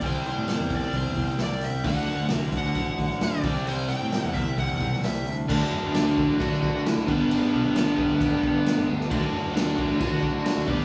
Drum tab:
CC |----------------|----------------|----------------|x---x---x---x---|
HH |o-o-o-o-o-o-o-o-|o-o-o-o-o-o-o-o-|o-o-o-o-o-o-o-o-|----------------|
SD |----o--o---oo---|----o------oo---|----o------oo---|----o-------o---|
BD |o-----o-o-o-----|o-----o-o-o---o-|------o-o-o-----|o-----o-o-o---o-|

CC |x---x---x---x---|x---x---x---x---|
HH |----------------|----------------|
SD |----o-------o--o|----o-------o--o|
BD |------o-o-o-----|o-----o-o-o---o-|